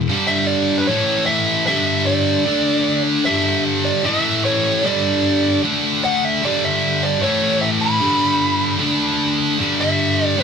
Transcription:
0.09 G2 D3 G3
0.27 E5
0.47 D5
0.78 B4
0.87 A2 E3 A3 C#5
1.26 E5
1.67 G2 D3 G3 E5
2.06 D5
2.45 D3 A3 D4
3.25 G2 D3 G3 E5
3.85 D5
4.04 A2 E3 A3 E5
4.45 C#5
4.83 G2 D3 G3 D5
5.63 D3 A3 D4
6.05 F#5
6.25 E5
6.42 G2 D3 G3 D5
6.65 E5
7.03 D5
7.20 A2 E3 A3 C#5
7.61 E5
7.81 B5
7.99 G2 D3 G3
8.79 D3 A3 D4
9.58 G2 D3 G3
9.81 E5
10.27 D5
10.37 A2 E3 A3 C#5

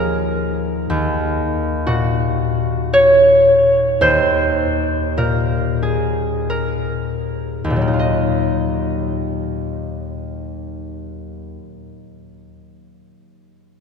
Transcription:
Already playing: D#2 F3 G#4 A#4 C#5 D#5
0.90 D#2
1.87 A#2 F#4
2.93 C#5
4.01 D#2 C5
5.17 A#2 A#4
5.82 G#4
6.50 A#4
7.64 D#2
7.70 A#2
7.76 F#3
7.81 A#3
7.87 D#4
7.93 F4
7.99 D#5

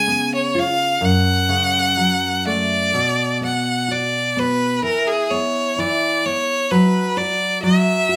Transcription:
Already playing: C#3 G#5
0.08 B3
0.35 C#5
0.55 F4 F5
1.01 F#2
1.05 F#5
1.49 C#3
1.97 F#3
2.46 A3 D5
2.94 B2
3.41 B3 F#5
3.88 F#4 D5
4.37 B3 B4
4.82 E3 A#4
5.07 G#4
5.30 B3 C#5
5.78 E3 D5
6.25 B3 C#5
6.71 F#3 B4
7.17 F#4 D5
7.63 F#3 E5
8.09 F#4

